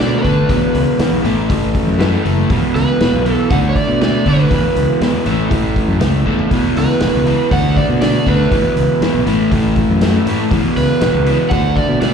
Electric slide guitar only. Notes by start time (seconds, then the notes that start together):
0.00 D5
0.18 A#4
0.23 B4
2.75 B4
3.32 A4
3.51 F#5
3.69 C#5
3.77 D5
4.02 D5
4.28 B4
6.78 B4
7.53 F#5
7.78 D5
8.02 D5
8.28 B4
10.77 B4
11.50 F#5
11.76 D5
12.01 D5